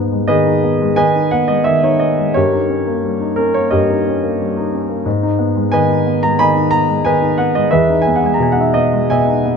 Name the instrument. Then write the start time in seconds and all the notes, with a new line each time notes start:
grand piano
Already playing: G#2 B3 D#4
0.12 G#3
0.28 D#3 G#4 B4 D#5
0.46 D#4
0.64 B3
0.82 G#3
0.96 D#3 B4 D#5 G#5
1.16 D#4
1.31 B3 F#5
1.48 G#3 D#5
1.64 D#3 E5
1.83 D#4 C#5
2.00 B3 D#5
2.18 G#3
2.34 G2 G4 A#4 C#5
2.53 D#4
2.69 C#4
2.87 A#3
3.04 G3
3.21 D#4
3.36 C#4 A#4
3.54 A#3 C#5
3.70 G2 G4 A#4 D#5
3.90 D#4
4.07 C#4
4.23 A#3
4.40 G3
4.57 D#4
4.74 C#4
4.89 A#3
5.06 G#2
5.23 D#4
5.39 B3
5.56 G#3
5.72 D#3 B4 D#5 G#5
5.90 D#4
6.07 B3
6.23 G#3 A#5
6.39 D#3 D#5 G#5 B5
6.57 D#4
6.71 B3 A#5
6.89 G#3
7.05 D#3 B4 D#5 G#5
7.22 D#4
7.38 B3 F#5
7.55 G#3 D#5
7.71 E2 G#4 B4 E5
7.90 D#4
8.02 G#5
8.07 B3
8.16 F#5
8.23 G#3 G#5
8.34 A#5
8.39 B2 G#5
8.52 F#5
8.56 D#4
8.61 E5
8.74 B3 D#5
8.93 G#3
9.10 B2 D#5 E5 G#5
9.28 D#4
9.46 B3